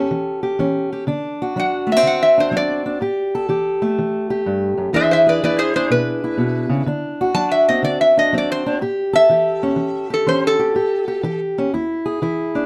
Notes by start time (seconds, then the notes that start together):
Already playing: C#4 G4 A4
0.11 E3
0.43 G4
0.59 E3 C#4
0.93 G4
1.07 D3 D4
1.42 F#4
1.56 F#3 D4 F#5
1.87 A3
1.92 E5
1.96 C4
2.03 D3
2.07 F#5
2.23 E5
2.38 D4 C5
2.51 F#3 C4
2.57 D5
2.86 D4
3.01 A2 G4
3.35 A4
3.49 E3 G4
3.82 A3
3.98 E3
4.30 G4
4.46 G2
4.77 F#2
4.93 E2 E3 D4 E4 G#4 C5 E5
5.11 C5 E5
5.27 G#4 B4 D5
5.43 E3 E4 B4 D5
5.59 G#4 C5
5.76 D4 G#4 C5
5.90 B2 B4
6.24 E4
6.37 B2
6.69 C#3
6.86 D3 D4
7.21 F#4
7.34 F#3 D4 A5
7.52 E5
7.69 C4 D#5
7.83 D3 D5
8.01 E5
8.17 D4 D#5
8.33 F#3 C4
8.38 D5
8.52 C5
8.66 D4
8.81 A2 G4
9.13 A4 E5
9.29 E3 G4
9.63 C#4
9.76 E3
10.10 G4 A4
10.27 E3 C#4 C5
10.47 A4
10.59 G4
10.75 A2 G4
11.08 G4
11.23 E3 G4
11.58 C#4
11.73 E2 E4
12.06 G#4
12.22 E3 E4
12.55 D4